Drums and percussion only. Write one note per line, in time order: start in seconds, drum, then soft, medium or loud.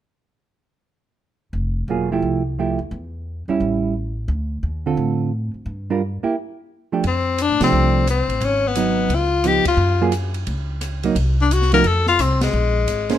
7.04 ride soft
7.38 hi-hat pedal medium
7.38 ride medium
7.61 snare medium
7.61 ride medium
8.07 cross-stick medium
8.07 hi-hat pedal medium
8.07 ride medium
8.30 ride soft
8.41 ride medium
8.75 hi-hat pedal medium
8.75 ride medium
9.10 ride medium
9.44 cross-stick medium
9.44 hi-hat pedal soft
9.44 ride medium
9.65 kick medium
9.65 ride medium
10.12 hi-hat pedal medium
10.12 ride medium
10.34 ride soft
10.47 ride medium
10.81 cross-stick medium
10.81 hi-hat pedal medium
10.81 ride medium
11.03 ride soft
11.16 ride medium
11.51 hi-hat pedal medium
11.51 ride medium
11.62 snare soft
11.72 snare soft
11.72 ride soft
11.84 ride medium
12.06 snare soft
12.19 cross-stick medium
12.19 hi-hat pedal medium
12.19 ride medium
12.41 snare medium
12.41 ride medium
12.88 hi-hat pedal medium
12.88 ride medium
13.09 snare soft
13.09 ride soft